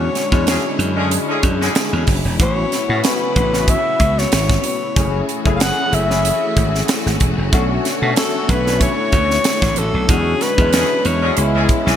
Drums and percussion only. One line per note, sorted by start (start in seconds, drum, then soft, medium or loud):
0.15 snare soft
0.15 closed hi-hat medium
0.32 kick medium
0.47 snare loud
0.47 closed hi-hat medium
0.80 closed hi-hat medium
1.11 closed hi-hat loud
1.43 kick medium
1.43 closed hi-hat medium
1.62 snare soft
1.75 snare loud
1.75 closed hi-hat loud
2.07 kick medium
2.07 open hi-hat medium
2.40 kick loud
2.40 closed hi-hat medium
2.72 snare soft
2.72 closed hi-hat medium
3.04 snare loud
3.04 closed hi-hat medium
3.36 kick medium
3.36 closed hi-hat medium
3.54 snare soft
3.68 kick medium
3.68 closed hi-hat medium
4.00 kick medium
4.00 closed hi-hat medium
4.18 snare soft
4.32 snare loud
4.32 closed hi-hat medium
4.50 kick medium
4.50 snare soft
4.64 closed hi-hat medium
4.96 kick loud
4.96 closed hi-hat medium
5.29 closed hi-hat medium
5.46 kick medium
5.60 snare loud
5.60 closed hi-hat medium
5.93 closed hi-hat medium
6.11 snare soft
6.25 closed hi-hat loud
6.57 kick medium
6.57 closed hi-hat medium
6.75 snare soft
6.88 snare loud
6.88 closed hi-hat loud
7.06 snare soft
7.20 kick medium
7.20 closed hi-hat medium
7.53 kick loud
7.53 closed hi-hat medium
7.85 snare soft
7.85 closed hi-hat medium
8.16 snare loud
8.16 closed hi-hat medium
8.49 kick loud
8.49 closed hi-hat medium
8.67 snare soft
8.81 kick medium
8.81 closed hi-hat medium
9.12 kick medium
9.12 closed hi-hat medium
9.31 snare soft
9.44 snare loud
9.44 closed hi-hat loud
9.62 kick loud
9.62 snare soft
9.76 closed hi-hat medium
10.09 kick loud
10.09 closed hi-hat medium
10.41 snare soft
10.41 closed hi-hat medium
10.58 kick medium
10.73 snare loud
10.73 closed hi-hat loud
11.05 closed hi-hat medium
11.37 closed hi-hat medium
11.69 kick medium
11.69 closed hi-hat medium
11.87 snare soft